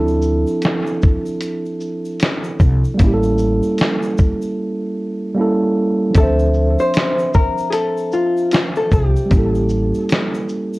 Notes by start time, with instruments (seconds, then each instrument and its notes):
Already playing: upright bass D2, tine electric piano F3 C4 D4 E4 A4
0.08 shaker
0.22 shaker
0.47 shaker
0.62 snare, closed hi-hat, shaker
0.86 shaker
1.02 kick, shaker
1.26 shaker
1.41 closed hi-hat, shaker
1.66 shaker
1.80 shaker
2.05 shaker
2.20 snare, closed hi-hat, shaker
2.44 shaker
2.60 upright bass C2, kick, shaker
2.84 shaker
2.94 tine electric piano G3 A#3
2.99 upright bass A1, tine electric piano C#4, kick, closed hi-hat, shaker
3.04 tine electric piano E4 G4
3.14 tine electric piano A4
3.23 shaker
3.38 shaker
3.63 shaker
3.78 snare, closed hi-hat, shaker
4.03 shaker
4.17 kick, shaker
4.42 shaker
5.35 tine electric piano G3 A#3 C#4
5.39 tine electric piano E4 A4
6.10 tine electric piano F3 C4
6.15 upright bass D2, tine electric piano D4, hollow-body jazz guitar A4, kick, closed hi-hat, shaker
6.20 tine electric piano C5 E5
6.39 shaker
6.54 shaker
6.79 hollow-body jazz guitar C5, shaker
6.94 snare, closed hi-hat, shaker
7.19 shaker
7.34 hollow-body jazz guitar A#4, kick, shaker
7.58 shaker
7.70 hollow-body jazz guitar G#4 A4, closed hi-hat, shaker
7.97 shaker
8.12 hollow-body jazz guitar F4, shaker
8.37 shaker
8.51 hollow-body jazz guitar F4, snare, closed hi-hat, shaker
8.76 hollow-body jazz guitar A4, shaker
8.91 upright bass C2, hollow-body jazz guitar G4, kick, shaker
9.16 shaker
9.26 tine electric piano G3 A#3
9.31 upright bass A1, tine electric piano C#4, kick, closed hi-hat, shaker
9.36 tine electric piano E4 A4
9.55 shaker
9.69 shaker
9.94 shaker
10.09 snare, closed hi-hat, shaker
10.34 shaker
10.49 shaker
10.74 shaker